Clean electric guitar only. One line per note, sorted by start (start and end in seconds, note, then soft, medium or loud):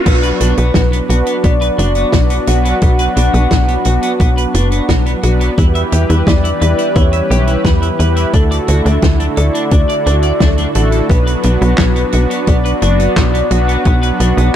0.06 0.15 B3 medium
0.23 0.28 B4 loud
0.41 0.53 D4 medium
0.58 0.71 B3 medium
0.75 0.80 F#4 medium
0.92 0.97 B3 medium
1.09 1.18 F#4 medium
1.27 1.35 B3 loud
1.44 1.53 B3 medium
1.61 1.66 B4 loud
1.78 1.91 D4 medium
1.96 2.09 B3 medium
2.13 2.18 F#4 medium
2.30 2.35 B3 medium
2.48 2.56 F#4 medium
2.65 2.73 B3 loud
2.82 2.91 B3 medium
2.99 3.04 B4 loud
3.16 3.29 D4 medium
3.33 3.46 B3 medium
3.51 3.56 F#4 medium
3.68 3.73 B3 medium
3.85 3.94 F#4 medium
4.03 4.11 B3 loud
4.20 4.28 B3 medium
4.37 4.42 B4 loud
4.54 4.67 D4 medium
4.72 4.85 B3 medium
4.89 4.94 F#4 medium
5.06 5.11 B3 medium
5.23 5.32 F#4 medium
5.41 5.49 B3 loud
5.58 5.66 E4 medium
5.75 5.80 E5 loud
5.92 6.05 G4 medium
6.09 6.22 E4 medium
6.27 6.32 B4 medium
6.44 6.49 E4 medium
6.61 6.70 B4 medium
6.79 6.87 E4 loud
6.96 7.04 E4 medium
7.13 7.18 E5 loud
7.30 7.43 G4 medium
7.47 7.60 E4 medium
7.65 7.70 B4 medium
7.82 7.87 E4 medium
7.99 8.08 B4 medium
8.16 8.25 E4 loud
8.34 8.42 D4 medium
8.51 8.56 D5 loud
8.68 8.81 F#4 medium
8.85 8.98 D4 medium
9.03 9.08 A4 medium
9.20 9.25 D4 medium
9.37 9.46 A4 medium
9.55 9.63 D4 loud
9.72 9.80 D4 medium
9.89 9.94 D5 loud
10.06 10.15 D4 loud
10.23 10.32 D5 loud
10.41 10.49 D4 medium
10.58 10.66 D4 medium
10.75 10.88 D4 medium
10.92 10.97 A4 medium
11.10 11.18 B3 medium
11.27 11.32 B4 loud
11.44 11.57 D4 medium
11.61 11.74 B3 medium
11.78 11.84 F#4 medium
11.96 12.01 B3 medium
12.13 12.22 F#4 medium
12.30 12.39 B3 loud
12.47 12.56 B3 medium
12.65 12.70 B4 loud
12.82 12.95 D4 medium
12.99 13.12 B3 medium
13.16 13.22 F#4 medium
13.34 13.39 B3 medium
13.51 13.60 F#4 medium
13.68 13.77 B3 loud
13.86 13.94 B3 medium
14.03 14.08 B4 loud
14.20 14.33 D4 medium
14.37 14.50 B3 medium